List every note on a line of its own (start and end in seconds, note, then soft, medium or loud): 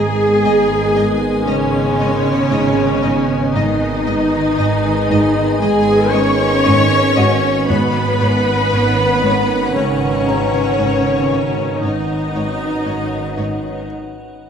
0.00 0.32 G#1 medium
0.00 0.24 G#2 soft
0.00 0.92 G#2 medium
0.00 3.51 D#3 medium
0.00 1.47 G#3 medium
0.00 3.51 G#3 medium
0.00 3.51 B3 medium
0.00 1.48 G#4 medium
0.00 3.51 G#4 medium
0.00 2.47 A#4 soft
0.00 3.51 D#5 medium
0.00 1.44 G#5 medium
0.00 3.51 G#5 medium
0.00 2.47 A#5 medium
0.45 1.36 G#1 medium
0.45 0.76 G#2 soft
0.45 0.53 D#5 soft
0.96 1.27 G#2 medium
0.96 1.04 D#5 soft
1.47 2.40 G#1 medium
1.47 3.55 C#3 medium
1.47 1.79 G#3 soft
1.47 3.50 C#4 medium
1.47 3.55 C#5 medium
1.47 1.55 D#5 soft
2.00 2.31 G#3 soft
2.00 2.08 D#5 soft
2.51 3.43 G#1 medium
2.51 2.83 G#2 medium
2.51 2.59 D#5 soft
3.03 3.35 G#2 soft
3.03 3.11 D#5 soft
3.54 4.47 G#1 medium
3.54 3.86 G#2 medium
3.54 7.53 D#3 medium
3.54 5.62 D#3 medium
3.54 7.53 G#3 medium
3.54 7.52 B3 medium
3.54 5.61 D#4 medium
3.54 7.52 B4 medium
3.54 7.65 B4 medium
3.54 5.58 D#5 medium
3.54 3.63 D#5 medium
3.54 7.65 D#5 medium
3.54 7.65 G#5 medium
4.06 4.38 G#2 soft
4.06 4.14 D#5 soft
4.58 5.50 G#1 medium
4.58 4.90 G#2 soft
4.58 4.66 D#5 soft
5.10 5.42 G#2 medium
5.10 5.18 D#5 medium
5.62 6.53 G#1 medium
5.62 6.14 G#3 medium
5.62 5.94 G#3 soft
5.62 6.13 G#4 medium
5.62 5.70 D#5 medium
5.62 6.14 G#5 medium
6.13 6.45 G#3 soft
6.13 7.66 C#4 medium
6.13 7.69 C#5 medium
6.13 6.21 D#5 soft
6.13 7.69 C#6 medium
6.64 7.57 G#1 medium
6.64 6.97 G#2 medium
6.64 6.72 D#5 soft
7.16 7.49 G#2 soft
7.16 10.24 F#4 soft
7.16 7.24 D#5 medium
7.16 10.24 F#5 soft
7.68 8.61 G#1 medium
7.68 9.20 G#2 medium
7.68 8.01 G#2 medium
7.68 11.79 D#3 medium
7.68 11.79 F#3 medium
7.68 9.76 B3 medium
7.68 11.79 C#4 medium
7.68 9.76 B4 medium
7.68 11.79 B4 medium
7.68 7.76 C#5 soft
7.68 11.82 C#5 medium
7.68 11.81 F#5 medium
7.68 9.72 B5 medium
8.20 8.52 G#2 medium
8.20 8.28 C#5 medium
8.72 9.64 G#1 medium
8.72 9.04 G#2 soft
8.72 8.80 C#5 medium
9.24 9.55 G#2 medium
9.24 9.33 C#5 soft
9.75 10.67 G#1 medium
9.75 11.79 C#3 medium
9.75 10.07 G#3 soft
9.75 11.79 C#4 medium
9.75 9.83 C#5 soft
9.75 11.83 C#5 medium
10.28 10.59 G#3 soft
10.28 10.37 C#5 soft
10.28 13.34 A#5 soft
10.79 11.70 G#1 soft
10.79 11.10 G#2 medium
10.79 10.87 C#5 soft
11.31 11.62 G#2 soft
11.31 11.39 C#5 soft
11.82 12.74 G#1 soft
11.82 12.14 G#2 soft
11.82 13.86 D#3 soft
11.82 13.90 D#3 soft
11.82 13.86 F#3 soft
11.82 13.86 C#4 soft
11.82 13.90 D#4 medium
11.82 13.86 B4 soft
11.82 11.91 C#5 soft
11.82 13.86 C#5 soft
11.82 13.90 D#5 soft
11.82 13.85 F#5 medium
12.35 12.66 G#2 soft
12.35 12.43 C#5 soft
12.86 13.77 G#1 soft
12.86 13.17 G#2 soft
12.86 12.95 C#5 soft
13.37 13.69 G#2 soft
13.37 13.45 C#5 soft
13.37 13.86 D#5 soft